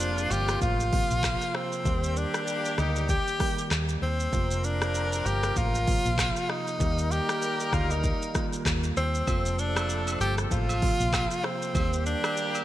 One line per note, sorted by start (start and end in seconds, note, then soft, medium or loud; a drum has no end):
0.00 0.27 F1 loud
0.00 0.56 C3 medium
0.00 1.50 C3 medium
0.00 0.56 F3 medium
0.00 1.50 F3 medium
0.00 0.57 A#3 medium
0.00 1.50 A#3 medium
0.00 0.33 D4 loud
0.00 0.57 F4 medium
0.00 1.50 F4 loud
0.00 shaker medium
0.18 shaker medium
0.31 0.55 G1 medium
0.31 0.62 G4 loud
0.31 shaker soft
0.48 cross-stick loud
0.48 shaker medium
0.61 1.00 A1 loud
0.61 1.56 F4 loud
0.61 kick loud
0.61 shaker medium
0.80 shaker medium
0.91 1.81 C3 medium
0.91 1.81 F3 medium
0.91 1.82 A#3 medium
0.91 1.82 F4 medium
0.91 kick loud
0.91 open hi-hat medium
1.11 1.35 A#1 medium
1.11 shaker medium
1.23 kick medium
1.23 cross-stick loud
1.23 clap loud
1.23 shaker medium
1.41 shaker medium
1.55 2.18 C4 loud
1.55 cross-stick loud
1.72 shaker soft
1.84 2.24 D#2 loud
1.84 3.03 D#3 medium
1.84 3.04 G3 medium
1.84 3.98 G3 medium
1.84 3.98 A#3 medium
1.84 3.04 A#3 medium
1.84 3.98 G4 loud
1.84 3.05 G4 medium
1.84 kick loud
1.84 shaker medium
2.03 shaker medium
2.16 2.80 D4 loud
2.16 shaker medium
2.34 cross-stick loud
2.34 shaker medium
2.47 shaker medium
2.65 shaker medium
2.78 3.17 D2 medium
2.78 3.09 D#4 loud
2.78 cross-stick loud
2.78 shaker medium
2.96 shaker medium
3.09 3.72 G4 loud
3.09 kick loud
3.09 shaker medium
3.27 shaker medium
3.39 4.28 D#3 medium
3.39 4.29 G3 medium
3.39 4.29 A#3 medium
3.39 4.30 G4 medium
3.39 kick loud
3.39 cross-stick medium
3.39 open hi-hat medium
3.58 shaker medium
3.71 3.96 D#2 medium
3.71 cross-stick loud
3.71 clap loud
3.71 shaker medium
3.89 shaker medium
4.02 4.26 D#2 loud
4.02 4.66 C4 loud
4.20 shaker soft
4.32 5.22 F1 loud
4.32 5.51 C3 medium
4.32 5.51 F3 medium
4.32 6.45 F3 medium
4.32 6.45 A#3 loud
4.32 5.52 A#3 medium
4.32 6.45 C4 medium
4.32 5.52 F4 medium
4.32 6.45 A#4 loud
4.32 kick loud
4.32 shaker medium
4.51 shaker medium
4.64 5.28 D4 loud
4.64 shaker medium
4.82 cross-stick loud
4.82 shaker medium
4.95 shaker medium
5.13 shaker medium
5.26 5.50 G1 medium
5.26 5.59 G4 loud
5.26 shaker soft
5.43 cross-stick loud
5.43 shaker medium
5.56 5.95 A1 loud
5.56 6.51 F4 loud
5.56 kick loud
5.56 shaker medium
5.75 shaker medium
5.86 6.76 C3 medium
5.86 6.76 F3 medium
5.86 6.77 A#3 medium
5.86 6.77 F4 medium
5.86 kick loud
5.86 open hi-hat medium
6.05 6.30 A#1 medium
6.05 shaker medium
6.18 kick medium
6.18 cross-stick loud
6.18 clap loud
6.18 shaker medium
6.36 shaker medium
6.50 7.13 D#4 loud
6.50 cross-stick loud
6.67 shaker soft
6.79 7.19 D#2 loud
6.79 7.98 D#3 medium
6.79 7.99 G3 medium
6.79 8.93 G3 medium
6.79 8.93 A#3 medium
6.79 7.99 A#3 medium
6.79 8.93 D#4 medium
6.79 7.99 G4 medium
6.79 8.93 A#4 loud
6.79 kick loud
6.79 shaker medium
6.98 shaker medium
7.11 7.75 G4 loud
7.11 shaker medium
7.29 cross-stick loud
7.29 shaker medium
7.42 shaker medium
7.60 shaker medium
7.73 8.12 D2 medium
7.73 7.93 F4 loud
7.73 kick loud
7.73 cross-stick loud
7.73 shaker medium
7.91 8.53 D#4 medium
7.91 shaker medium
8.04 kick loud
8.04 shaker medium
8.22 shaker medium
8.34 9.23 D#3 medium
8.34 9.24 G3 medium
8.34 9.24 A#3 medium
8.34 9.24 F4 medium
8.34 kick loud
8.34 cross-stick loud
8.34 shaker medium
8.53 shaker medium
8.66 8.90 D#2 loud
8.66 kick medium
8.66 cross-stick loud
8.66 clap loud
8.66 shaker medium
8.83 shaker medium
8.97 9.21 D#2 loud
8.97 9.61 C4 loud
8.97 shaker medium
9.15 shaker soft
9.27 10.16 F1 loud
9.27 10.46 C3 medium
9.27 10.46 F3 medium
9.27 11.40 F3 medium
9.27 11.40 A3 medium
9.27 10.46 A#3 medium
9.27 11.40 C4 medium
9.27 10.47 F4 medium
9.27 11.40 A4 loud
9.27 kick loud
9.27 high agogo medium
9.27 shaker medium
9.46 shaker medium
9.59 10.20 D4 loud
9.59 shaker medium
9.76 cross-stick loud
9.76 high agogo medium
9.76 shaker medium
9.89 shaker medium
10.07 high agogo medium
10.07 shaker medium
10.20 10.45 G1 medium
10.20 10.35 G4 loud
10.20 shaker medium
10.38 cross-stick loud
10.38 shaker medium
10.51 10.90 A1 loud
10.51 11.46 F4 loud
10.51 kick loud
10.51 shaker medium
10.69 high agogo medium
10.69 shaker medium
10.81 11.71 C3 medium
10.81 11.71 F3 medium
10.81 11.71 A#3 medium
10.81 11.72 F4 medium
10.81 kick loud
10.81 open hi-hat medium
11.00 11.25 A#1 medium
11.00 shaker medium
11.13 kick medium
11.13 cross-stick loud
11.13 clap loud
11.13 high agogo medium
11.13 low woodblock medium
11.13 shaker medium
11.31 shaker medium
11.44 12.06 C4 loud
11.44 cross-stick loud
11.62 shaker medium
11.74 12.14 D#2 loud
11.74 12.64 D#3 medium
11.74 12.64 G3 medium
11.74 12.64 A#3 medium
11.74 12.64 G4 loud
11.74 12.64 G4 medium
11.74 kick loud
11.74 high agogo medium
11.74 shaker medium
11.93 shaker medium
12.06 12.64 D4 loud
12.06 shaker medium
12.24 cross-stick loud
12.24 high agogo medium
12.24 shaker medium
12.37 shaker medium
12.55 high agogo medium
12.55 shaker medium